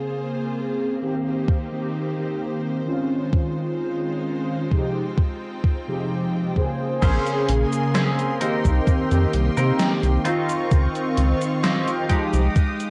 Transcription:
0.00 0.96 C#3 medium
0.00 0.97 A#3 medium
0.00 2.84 A#3 medium
0.00 0.97 C4 medium
0.00 0.98 F4 medium
0.00 0.98 G#4 medium
0.00 1.01 G#4 medium
0.00 1.01 C5 medium
1.01 1.66 D#3 medium
1.01 1.66 A#3 medium
1.01 1.67 C4 medium
1.01 2.85 C4 medium
1.01 2.85 D#4 medium
1.01 2.85 G4 medium
1.01 1.67 G4 medium
1.01 6.98 C5 medium
1.48 kick loud
1.72 2.12 D#3 medium
1.72 2.13 A#3 medium
1.72 2.13 C4 medium
1.72 2.13 G4 medium
2.17 2.81 D#3 medium
2.17 2.81 A#3 medium
2.17 2.82 C4 medium
2.17 2.82 G4 medium
2.85 4.65 D#3 medium
2.85 6.99 G#3 medium
2.85 4.66 C4 medium
2.85 4.66 C#4 medium
2.85 6.98 D#4 medium
2.85 6.98 F4 medium
2.85 4.67 F4 medium
3.33 kick loud
4.71 5.01 C3 medium
4.71 5.02 F3 medium
4.71 5.02 G#3 medium
4.71 7.00 C4 medium
4.71 5.02 D#4 medium
4.71 5.02 G4 medium
4.71 7.00 G5 medium
4.71 kick medium
5.18 kick loud
5.64 kick loud
5.87 6.51 C3 medium
5.87 6.51 F3 medium
5.87 6.51 G#3 medium
5.87 6.51 D#4 medium
5.87 6.51 G4 loud
6.56 7.00 C#3 medium
6.56 7.01 A#3 medium
6.56 7.03 G#4 loud
6.56 7.49 C5 medium
6.56 kick medium
7.01 7.19 A#1 loud
7.01 8.31 C#3 loud
7.01 8.32 A#3 medium
7.01 7.49 C4 loud
7.01 7.49 C#4 loud
7.01 7.49 G#4 loud
7.01 8.33 G#4 loud
7.01 10.23 A#4 medium
7.01 8.40 G#5 medium
7.01 8.40 C6 medium
7.01 kick loud
7.01 closed hi-hat medium
7.01 crash loud
7.01 cabasa soft
7.27 closed hi-hat soft
7.27 cabasa soft
7.49 7.65 A#1 loud
7.49 closed hi-hat loud
7.73 closed hi-hat soft
7.73 cabasa medium
7.94 8.40 C4 medium
7.94 8.41 C#4 medium
7.94 8.40 G#4 medium
7.94 snare loud
7.94 closed hi-hat medium
7.94 cabasa medium
8.19 closed hi-hat soft
8.19 cabasa soft
8.40 9.05 D#3 medium
8.40 9.05 A#3 medium
8.40 9.05 C4 medium
8.40 9.33 C4 medium
8.40 9.33 D#4 medium
8.40 9.06 G4 medium
8.40 9.33 A#4 medium
8.40 10.24 D#5 medium
8.40 10.24 G5 medium
8.40 10.24 C6 medium
8.40 closed hi-hat loud
8.65 8.80 C2 loud
8.65 kick medium
8.65 closed hi-hat soft
8.65 cabasa medium
8.87 9.06 F2 soft
8.87 kick loud
8.87 closed hi-hat medium
8.87 cabasa soft
9.10 9.26 F2 medium
9.10 9.51 D#3 medium
9.10 9.51 A#3 medium
9.10 9.52 C4 medium
9.10 9.52 G4 loud
9.10 closed hi-hat soft
9.10 cabasa soft
9.33 9.50 C2 loud
9.33 closed hi-hat medium
9.57 9.72 C3 medium
9.57 10.20 D#3 medium
9.57 10.20 A#3 medium
9.57 10.20 C4 medium
9.57 9.91 C4 medium
9.57 9.91 D#4 medium
9.57 10.21 G4 medium
9.57 9.91 A#4 loud
9.57 closed hi-hat soft
9.57 cabasa medium
9.79 snare loud
9.79 closed hi-hat medium
9.79 cabasa soft
10.03 10.18 C2 medium
10.03 closed hi-hat soft
10.03 cabasa soft
10.24 12.04 D#3 medium
10.24 12.05 C4 medium
10.24 12.08 C4 medium
10.24 11.37 C4 medium
10.24 11.37 D#4 medium
10.24 11.37 F4 loud
10.24 12.06 F4 medium
10.24 12.08 D#5 medium
10.24 12.90 F5 medium
10.24 12.08 C#6 medium
10.24 closed hi-hat loud
10.49 closed hi-hat soft
10.49 cabasa medium
10.72 10.88 C#2 loud
10.72 kick loud
10.72 closed hi-hat medium
10.72 cabasa soft
10.95 closed hi-hat soft
10.95 cabasa soft
11.18 11.34 C#2 medium
11.18 closed hi-hat medium
11.42 closed hi-hat soft
11.42 cabasa medium
11.64 12.10 C4 medium
11.64 12.08 D#4 medium
11.64 12.09 G4 medium
11.64 snare loud
11.64 closed hi-hat medium
11.64 cabasa soft
11.88 closed hi-hat soft
11.88 cabasa soft
12.09 12.40 F3 medium
12.09 12.40 G#3 medium
12.09 12.90 G#3 medium
12.09 12.90 D#4 medium
12.09 12.41 D#4 medium
12.09 12.90 G4 loud
12.09 12.41 G4 medium
12.09 12.90 G5 medium
12.09 12.90 D#6 medium
12.09 kick medium
12.09 closed hi-hat loud
12.34 12.49 C2 loud
12.34 closed hi-hat soft
12.34 cabasa medium
12.56 kick loud
12.56 closed hi-hat medium
12.56 cabasa soft
12.80 closed hi-hat soft
12.80 cabasa soft

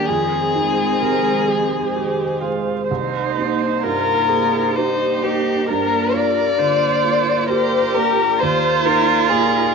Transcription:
0.00 2.90 D#3 medium
0.00 0.10 D4 medium
0.06 2.86 F2 soft
0.06 2.43 C4 medium
0.06 2.41 G#4 medium
0.06 0.90 G#4 soft
0.06 5.68 C5 medium
0.10 2.91 G#3 medium
0.56 1.30 D#4 soft
1.01 1.76 C3 soft
1.01 1.50 A#4 medium
1.48 2.23 G#3 soft
1.48 1.98 G#4 soft
1.96 2.43 G4 soft
1.96 2.71 G#4 soft
2.42 2.90 G#3 soft
2.42 2.88 F4 soft
2.88 5.64 C2 soft
2.88 8.39 A#3 medium
2.88 3.79 D#4 medium
2.88 5.64 D#4 medium
2.88 3.85 C5 soft
3.39 4.12 D#4 soft
3.83 4.57 G2 soft
3.83 4.77 F4 medium
3.83 4.78 A#4 medium
3.83 4.30 A#4 soft
4.29 5.03 A#3 soft
4.29 4.77 G#4 soft
4.75 5.70 D#4 medium
4.75 5.68 G4 soft
4.75 5.50 G4 soft
4.75 5.25 C5 soft
5.23 5.68 A#3 soft
5.23 5.68 G4 soft
5.67 8.37 G2 soft
5.67 6.60 D4 medium
5.67 8.40 F4 medium
5.67 6.60 A#4 soft
5.67 6.16 A#4 soft
5.67 9.75 D5 medium
6.14 6.86 F4 soft
6.14 7.48 D5 medium
6.58 7.31 D3 soft
6.58 7.50 F4 medium
6.58 7.49 C5 soft
7.05 7.77 A#3 soft
7.48 8.39 G4 medium
7.48 8.22 G4 soft
7.48 8.41 A#4 soft
7.48 7.96 C5 medium
7.94 8.41 A#3 soft
7.94 8.41 A#4 medium
8.39 9.75 D#2 soft
8.39 9.75 A#3 medium
8.39 9.75 D#4 medium
8.39 9.75 F4 loud
8.39 9.32 C5 soft
8.39 8.86 C5 medium
8.85 9.59 D#4 soft
8.85 9.31 A#4 medium
9.29 9.75 A#2 soft
9.29 9.75 G#4 medium
9.29 9.75 A#4 medium

